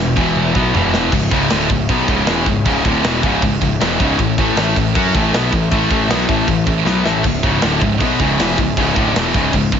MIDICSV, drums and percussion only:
0, 0, Header, 1, 2, 480
1, 0, Start_track
1, 0, Tempo, 382166
1, 1412, Time_signature, 4, 2, 24, 8
1, 12305, End_track
2, 0, Start_track
2, 0, Title_t, "Drums"
2, 211, Note_on_c, 9, 36, 105
2, 222, Note_on_c, 9, 49, 59
2, 336, Note_off_c, 9, 36, 0
2, 347, Note_off_c, 9, 49, 0
2, 453, Note_on_c, 9, 48, 65
2, 578, Note_off_c, 9, 48, 0
2, 693, Note_on_c, 9, 36, 96
2, 819, Note_off_c, 9, 36, 0
2, 938, Note_on_c, 9, 45, 94
2, 1063, Note_off_c, 9, 45, 0
2, 1178, Note_on_c, 9, 38, 84
2, 1303, Note_off_c, 9, 38, 0
2, 1410, Note_on_c, 9, 36, 89
2, 1410, Note_on_c, 9, 49, 79
2, 1410, Note_on_c, 9, 57, 108
2, 1535, Note_off_c, 9, 36, 0
2, 1536, Note_off_c, 9, 49, 0
2, 1536, Note_off_c, 9, 57, 0
2, 1646, Note_on_c, 9, 49, 63
2, 1651, Note_on_c, 9, 36, 105
2, 1771, Note_off_c, 9, 49, 0
2, 1777, Note_off_c, 9, 36, 0
2, 1886, Note_on_c, 9, 49, 82
2, 1892, Note_on_c, 9, 38, 107
2, 2011, Note_off_c, 9, 49, 0
2, 2017, Note_off_c, 9, 38, 0
2, 2132, Note_on_c, 9, 49, 63
2, 2133, Note_on_c, 9, 36, 93
2, 2257, Note_off_c, 9, 49, 0
2, 2259, Note_off_c, 9, 36, 0
2, 2374, Note_on_c, 9, 36, 104
2, 2374, Note_on_c, 9, 49, 81
2, 2499, Note_off_c, 9, 49, 0
2, 2500, Note_off_c, 9, 36, 0
2, 2612, Note_on_c, 9, 49, 60
2, 2614, Note_on_c, 9, 36, 112
2, 2737, Note_off_c, 9, 49, 0
2, 2740, Note_off_c, 9, 36, 0
2, 2847, Note_on_c, 9, 49, 80
2, 2853, Note_on_c, 9, 38, 109
2, 2973, Note_off_c, 9, 49, 0
2, 2979, Note_off_c, 9, 38, 0
2, 3089, Note_on_c, 9, 49, 56
2, 3093, Note_on_c, 9, 36, 94
2, 3214, Note_off_c, 9, 49, 0
2, 3219, Note_off_c, 9, 36, 0
2, 3337, Note_on_c, 9, 36, 95
2, 3338, Note_on_c, 9, 49, 71
2, 3463, Note_off_c, 9, 36, 0
2, 3464, Note_off_c, 9, 49, 0
2, 3579, Note_on_c, 9, 36, 102
2, 3581, Note_on_c, 9, 49, 59
2, 3705, Note_off_c, 9, 36, 0
2, 3706, Note_off_c, 9, 49, 0
2, 3821, Note_on_c, 9, 49, 85
2, 3827, Note_on_c, 9, 38, 114
2, 3946, Note_off_c, 9, 49, 0
2, 3953, Note_off_c, 9, 38, 0
2, 4060, Note_on_c, 9, 36, 100
2, 4066, Note_on_c, 9, 49, 59
2, 4186, Note_off_c, 9, 36, 0
2, 4191, Note_off_c, 9, 49, 0
2, 4299, Note_on_c, 9, 49, 82
2, 4300, Note_on_c, 9, 36, 96
2, 4424, Note_off_c, 9, 49, 0
2, 4425, Note_off_c, 9, 36, 0
2, 4542, Note_on_c, 9, 36, 83
2, 4548, Note_on_c, 9, 49, 54
2, 4668, Note_off_c, 9, 36, 0
2, 4673, Note_off_c, 9, 49, 0
2, 4786, Note_on_c, 9, 49, 82
2, 4792, Note_on_c, 9, 38, 112
2, 4912, Note_off_c, 9, 49, 0
2, 4918, Note_off_c, 9, 38, 0
2, 5024, Note_on_c, 9, 36, 108
2, 5031, Note_on_c, 9, 49, 62
2, 5150, Note_off_c, 9, 36, 0
2, 5156, Note_off_c, 9, 49, 0
2, 5262, Note_on_c, 9, 36, 84
2, 5263, Note_on_c, 9, 49, 72
2, 5388, Note_off_c, 9, 36, 0
2, 5388, Note_off_c, 9, 49, 0
2, 5502, Note_on_c, 9, 36, 99
2, 5506, Note_on_c, 9, 49, 66
2, 5628, Note_off_c, 9, 36, 0
2, 5632, Note_off_c, 9, 49, 0
2, 5739, Note_on_c, 9, 49, 92
2, 5745, Note_on_c, 9, 38, 112
2, 5865, Note_off_c, 9, 49, 0
2, 5871, Note_off_c, 9, 38, 0
2, 5983, Note_on_c, 9, 36, 90
2, 5989, Note_on_c, 9, 49, 67
2, 6108, Note_off_c, 9, 36, 0
2, 6115, Note_off_c, 9, 49, 0
2, 6221, Note_on_c, 9, 36, 114
2, 6227, Note_on_c, 9, 49, 88
2, 6347, Note_off_c, 9, 36, 0
2, 6353, Note_off_c, 9, 49, 0
2, 6463, Note_on_c, 9, 36, 98
2, 6470, Note_on_c, 9, 49, 62
2, 6589, Note_off_c, 9, 36, 0
2, 6595, Note_off_c, 9, 49, 0
2, 6707, Note_on_c, 9, 49, 85
2, 6713, Note_on_c, 9, 38, 119
2, 6833, Note_off_c, 9, 49, 0
2, 6839, Note_off_c, 9, 38, 0
2, 6940, Note_on_c, 9, 36, 84
2, 6941, Note_on_c, 9, 49, 69
2, 7066, Note_off_c, 9, 36, 0
2, 7067, Note_off_c, 9, 49, 0
2, 7180, Note_on_c, 9, 36, 102
2, 7187, Note_on_c, 9, 49, 73
2, 7306, Note_off_c, 9, 36, 0
2, 7312, Note_off_c, 9, 49, 0
2, 7418, Note_on_c, 9, 36, 105
2, 7421, Note_on_c, 9, 49, 58
2, 7544, Note_off_c, 9, 36, 0
2, 7547, Note_off_c, 9, 49, 0
2, 7664, Note_on_c, 9, 49, 82
2, 7670, Note_on_c, 9, 38, 109
2, 7789, Note_off_c, 9, 49, 0
2, 7796, Note_off_c, 9, 38, 0
2, 7898, Note_on_c, 9, 36, 100
2, 7901, Note_on_c, 9, 49, 54
2, 8024, Note_off_c, 9, 36, 0
2, 8026, Note_off_c, 9, 49, 0
2, 8136, Note_on_c, 9, 49, 76
2, 8137, Note_on_c, 9, 36, 89
2, 8262, Note_off_c, 9, 49, 0
2, 8263, Note_off_c, 9, 36, 0
2, 8376, Note_on_c, 9, 36, 91
2, 8378, Note_on_c, 9, 49, 62
2, 8501, Note_off_c, 9, 36, 0
2, 8504, Note_off_c, 9, 49, 0
2, 8621, Note_on_c, 9, 38, 70
2, 8746, Note_off_c, 9, 38, 0
2, 8862, Note_on_c, 9, 38, 92
2, 8988, Note_off_c, 9, 38, 0
2, 9096, Note_on_c, 9, 36, 86
2, 9096, Note_on_c, 9, 49, 77
2, 9096, Note_on_c, 9, 57, 93
2, 9222, Note_off_c, 9, 36, 0
2, 9222, Note_off_c, 9, 49, 0
2, 9222, Note_off_c, 9, 57, 0
2, 9336, Note_on_c, 9, 36, 115
2, 9340, Note_on_c, 9, 49, 58
2, 9461, Note_off_c, 9, 36, 0
2, 9465, Note_off_c, 9, 49, 0
2, 9568, Note_on_c, 9, 49, 76
2, 9574, Note_on_c, 9, 38, 114
2, 9694, Note_off_c, 9, 49, 0
2, 9700, Note_off_c, 9, 38, 0
2, 9816, Note_on_c, 9, 36, 90
2, 9816, Note_on_c, 9, 49, 57
2, 9941, Note_off_c, 9, 36, 0
2, 9942, Note_off_c, 9, 49, 0
2, 10049, Note_on_c, 9, 49, 87
2, 10056, Note_on_c, 9, 36, 110
2, 10175, Note_off_c, 9, 49, 0
2, 10181, Note_off_c, 9, 36, 0
2, 10296, Note_on_c, 9, 36, 97
2, 10300, Note_on_c, 9, 49, 60
2, 10422, Note_off_c, 9, 36, 0
2, 10425, Note_off_c, 9, 49, 0
2, 10544, Note_on_c, 9, 49, 92
2, 10550, Note_on_c, 9, 38, 104
2, 10670, Note_off_c, 9, 49, 0
2, 10676, Note_off_c, 9, 38, 0
2, 10778, Note_on_c, 9, 36, 88
2, 10780, Note_on_c, 9, 49, 61
2, 10903, Note_off_c, 9, 36, 0
2, 10905, Note_off_c, 9, 49, 0
2, 11016, Note_on_c, 9, 36, 97
2, 11016, Note_on_c, 9, 49, 78
2, 11142, Note_off_c, 9, 36, 0
2, 11142, Note_off_c, 9, 49, 0
2, 11257, Note_on_c, 9, 36, 109
2, 11259, Note_on_c, 9, 49, 59
2, 11382, Note_off_c, 9, 36, 0
2, 11385, Note_off_c, 9, 49, 0
2, 11502, Note_on_c, 9, 49, 90
2, 11508, Note_on_c, 9, 38, 113
2, 11628, Note_off_c, 9, 49, 0
2, 11634, Note_off_c, 9, 38, 0
2, 11736, Note_on_c, 9, 36, 106
2, 11741, Note_on_c, 9, 49, 59
2, 11861, Note_off_c, 9, 36, 0
2, 11866, Note_off_c, 9, 49, 0
2, 11973, Note_on_c, 9, 36, 90
2, 11975, Note_on_c, 9, 49, 85
2, 12098, Note_off_c, 9, 36, 0
2, 12100, Note_off_c, 9, 49, 0
2, 12207, Note_on_c, 9, 49, 60
2, 12212, Note_on_c, 9, 36, 90
2, 12305, Note_off_c, 9, 36, 0
2, 12305, Note_off_c, 9, 49, 0
2, 12305, End_track
0, 0, End_of_file